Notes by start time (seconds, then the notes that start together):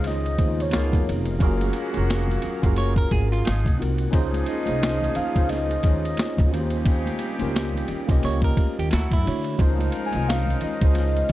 Already playing: C#2 C3 C#3 D#3 G#3 D#4 F4 G#4 C5 C#5 D#5
0.04 D#5, snare, ride
0.26 ride
0.37 D#2 C#4 D#4 F4 G#4 C5, kick, ride, high conga
0.60 C#5, ride
0.71 B2 A#3 B3 D#4 F4 G#4 A#4 F5, snare, ride, muted conga, high conga
0.75 C#2 A#4
0.92 F2, kick, ride, muted conga, high conga
1.09 F1, ride
1.25 ride
1.39 F#1 C#3 F#3 A#3 C#4 F4 F#4 G#4, kick, ride
1.43 A#4
1.61 ride, high conga
1.73 ride
1.93 C#4 F4 F#4 G#4, ride, high conga
1.97 F1 A#4
2.10 snare, ride
2.28 ride, muted conga, high conga, low conga
2.42 muted upright bass stroke, ride, low conga
2.62 F#1 C#4 F4 F#4 G#4, kick, ride
2.66 A#4
2.76 C#5, snare, ride, muted conga
2.96 A#4, kick, ride, muted conga
3.11 G#1 G#4, kick, ride, high conga
3.32 F4, ride
3.44 G#1 F3 G#3 A#3 D#4 G#4 F#5, snare, ride, high conga
3.65 C2, kick, ride, muted conga, high conga
3.78 C2 C4 D#4 F4 F#4
3.82 A#4, ride
3.98 ride
4.11 C#2 F3 C#4 D#4 F4 G#4, kick, ride, muted conga
4.15 C5
4.33 ride, high conga
4.46 D#5, ride
4.65 C2 C#4 D#4 F4 G#4 C5, ride, high conga
4.83 snare, ride
5.00 ride, high conga, low conga
5.15 F5, muted upright bass stroke, ride, low conga
5.33 C#2 C#4 D#4 F4 G#4 C5, kick, ride
5.49 D#5, snare, ride, muted conga
5.69 ride, muted conga
5.82 D#2 C#4 D#4 F4 G#4 C#5, kick, ride, high conga
6.04 D#5, ride
6.17 snare, ride, high conga
6.37 C#2, kick, ride, high conga
6.50 D#2 C#3 G3 A#3 C4 C#4 F4 F#4 G4 C5, ride
6.59 G4
6.70 ride
6.84 kick, ride, muted conga
7.06 ride, muted conga, high conga
7.19 ride
7.38 C#2 A#3 C#4 F4 G4, ride, high conga
7.42 A#4
7.55 snare, ride, muted conga
7.73 ride, high conga, low conga
7.88 muted upright bass stroke, ride, low conga
8.07 C2 A#3 C#4 F4 G4 D#5, kick, snare, ride
8.23 C#2 C#5, snare, ride, muted conga
8.41 A#4, kick, ride, muted conga
8.57 muted upright bass stroke, kick, ride, high conga
8.79 D#2 G4, ride
8.91 D2 D3 F#3 E4 F#4 A4, snare, ride, high conga
9.10 F#2 E4, kick, ride, muted conga, high conga
9.24 D3 A3 D4 E4 F#4, open hi-hat, ride
9.28 C#5
9.44 ride
9.57 C#2 F3 G#3 C#4 D#4 F4 A#4 F5, kick, ride, muted conga
9.62 C5
9.78 ride, muted conga, high conga
9.92 ride
10.05 G#5
10.12 C2 G#3 C#4 D#4 F4, ride, high conga
10.16 D#5
10.28 F5, snare, ride, muted conga
10.46 ride, muted conga, high conga, low conga
10.61 D#5, muted upright bass stroke, ride, low conga
10.81 C#2 G#3 C#4 D#4 F4 C5, kick, ride
10.95 snare, ride, muted conga
11.14 ride, muted conga
11.28 G#3